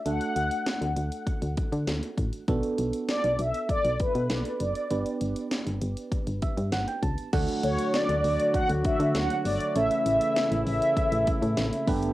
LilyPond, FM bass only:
\new Staff \with { instrumentName = "FM bass" } { \clef bass \time 4/4 \key d \major \tempo 4 = 99 d,16 r16 d,16 r8 d,16 d,16 r8 d,16 r16 d16 d,16 r16 a,,16 r16 | b,,16 r16 b,,16 r8 b,,16 b,,16 r8 b,,16 r16 b,16 b,,16 r16 fis,,16 r16 | g,,16 r16 g,,16 r8 g,,16 g,,16 r8 g,,16 r16 g,16 g,,16 r16 cis,16 r16 | d,16 r16 d,16 r8 d,16 d,16 r8 d,16 r16 d16 d,16 r16 g,,16 r16 |
a,,16 r16 a,,16 r8 a,,16 a,,16 r8 a,,16 r16 a,16 a,,16 r16 g,,8 | }